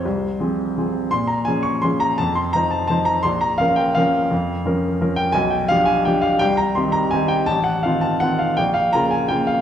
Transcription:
\new Staff \with { instrumentName = "Grand piano" } { \time 3/4 \key f \minor \tempo 4 = 168 << { c''2. | c'''8 bes''8 aes''8 des'''8 c'''8 bes''8 | a''8 c'''8 bes''8 a''8 a''8 bes''8 | c'''8 bes''8 f''8 g''8 f''4~ |
f''2~ f''8 g''8 | aes''8 g''8 f''8 aes''8 g''8 f''8 | g''8 bes''8 c'''8 bes''8 aes''8 g''8 | a''8 ges''8 f''8 a''8 ges''8 f''8 |
g''8 f''8 bes''8 aes''8 g''8 f''8 | } \\ { c,4 <f c' aes'>4 <f c' aes'>4 | bes,4 <f des' aes'>4 <f des' aes'>4 | f,4 <f ees' c''>4 <f ees' c''>4 | bes,,4 <f des' bes'>4 <f des' bes'>4 |
f,4 <f des' bes'>4 <f des' bes'>4 | b,,4 <f d' g'>4 <f d' g'>4 | c,4 <ees c' g'>4 <ees c' g'>4 | a,,4 <ees c' f'>4 <ees c' f'>4 |
bes,,4 <des bes f'>4 <des bes f'>4 | } >> }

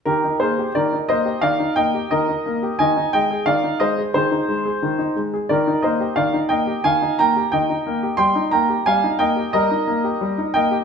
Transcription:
\new Staff \with { instrumentName = "Grand piano" } { \time 4/4 \key ees \major \tempo 4 = 89 << { <g' bes'>8 <aes' c''>8 <bes' d''>8 <c'' ees''>8 <d'' f''>8 <ees'' g''>8 <bes' ees''>4 | <ees'' aes''>8 <ees'' g''>8 <d'' f''>8 <c'' ees''>8 <aes' c''>4. r8 | <bes' d''>8 <c'' ees''>8 <d'' f''>8 <ees'' g''>8 <f'' aes''>8 <g'' bes''>8 <ees'' g''>4 | <g'' c'''>8 <g'' bes''>8 <f'' aes''>8 <ees'' g''>8 <bes' ees''>4. <ees'' g''>8 | } \\ { ees16 ees'16 bes16 g'16 ees16 ees'16 bes16 g'16 ees16 ees'16 bes16 g'16 ees16 ees'16 bes16 g'16 | ees16 ees'16 aes16 aes'16 ees16 ees'16 aes16 aes'16 ees16 ees'16 aes16 aes'16 ees16 ees'16 aes16 aes'16 | ees16 ees'16 bes16 g'16 ees16 ees'16 bes16 g'16 ees16 ees'16 bes16 g'16 ees16 ees'16 bes16 g'16 | g16 ees'16 bes16 g'16 g16 ees'16 bes16 g'16 g16 ees'16 bes16 g'16 g16 ees'16 bes16 g'16 | } >> }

